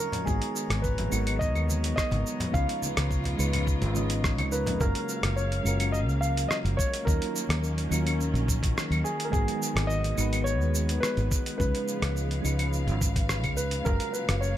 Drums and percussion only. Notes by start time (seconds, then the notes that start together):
0.12 closed hi-hat, low conga, shaker
0.27 kick, shaker
0.42 closed hi-hat, shaker
0.56 shaker
0.70 cross-stick, closed hi-hat, shaker
0.84 kick, shaker
0.98 closed hi-hat, low conga, shaker
1.12 claves, shaker
1.27 closed hi-hat, claves, shaker
1.41 kick, shaker
1.55 claves, shaker
1.68 high conga, shaker
1.84 closed hi-hat, shaker
1.98 kick, cross-stick, shaker
2.11 closed hi-hat, high conga, shaker
2.27 shaker
2.40 closed hi-hat, low conga, shaker
2.54 kick, shaker
2.69 closed hi-hat, shaker
2.82 high conga, shaker
2.97 cross-stick, closed hi-hat, shaker
3.11 kick, shaker
3.24 closed hi-hat, low conga, shaker
3.39 claves, shaker
3.53 closed hi-hat, low conga, claves, shaker
3.67 kick, shaker
3.82 closed hi-hat, shaker
3.94 high conga, shaker
4.10 closed hi-hat, shaker
4.24 kick, cross-stick, shaker
4.38 closed hi-hat, high conga, claves, shaker
4.52 shaker
4.66 closed hi-hat, high conga, low conga, shaker
4.80 kick, shaker
4.95 closed hi-hat, shaker
5.09 shaker
5.23 cross-stick, closed hi-hat, shaker
5.37 shaker
5.52 closed hi-hat, shaker
5.66 claves, shaker
5.80 closed hi-hat, claves, shaker
5.94 shaker
6.09 shaker
6.23 shaker
6.37 closed hi-hat, shaker
6.51 cross-stick, shaker
6.66 closed hi-hat, shaker
6.79 kick, shaker
6.94 closed hi-hat, shaker
7.07 kick, shaker
7.22 closed hi-hat, shaker
7.36 shaker
7.50 cross-stick, closed hi-hat, shaker
7.64 shaker
7.78 closed hi-hat, shaker
7.92 claves, shaker
8.07 closed hi-hat, claves, shaker
8.20 shaker
8.35 closed hi-hat, shaker
8.48 kick, shaker
8.63 kick, closed hi-hat, shaker
8.78 cross-stick, shaker
8.92 closed hi-hat, claves, shaker
9.05 shaker
9.20 closed hi-hat, shaker
9.33 kick, shaker
9.48 closed hi-hat, shaker
9.62 shaker
9.77 cross-stick, closed hi-hat, shaker
9.90 shaker
10.04 closed hi-hat, shaker
10.18 claves, shaker
10.33 closed hi-hat, claves, shaker
10.46 shaker
10.61 shaker
10.75 shaker
10.89 closed hi-hat, shaker
11.03 cross-stick, shaker
11.17 closed hi-hat, shaker
11.31 kick, shaker
11.46 closed hi-hat, shaker
11.60 kick, shaker
11.75 closed hi-hat, shaker
11.88 shaker
12.02 cross-stick, closed hi-hat, shaker
12.17 shaker
12.31 closed hi-hat, shaker
12.45 claves, shaker
12.59 closed hi-hat, claves, shaker
12.73 shaker
12.88 closed hi-hat, shaker
13.01 kick, shaker
13.16 kick, closed hi-hat, shaker
13.29 cross-stick, shaker
13.44 kick, closed hi-hat, claves, shaker
13.57 shaker
13.71 closed hi-hat, shaker
13.85 kick, shaker
14.00 closed hi-hat, shaker
14.14 shaker
14.29 cross-stick, closed hi-hat, shaker
14.43 shaker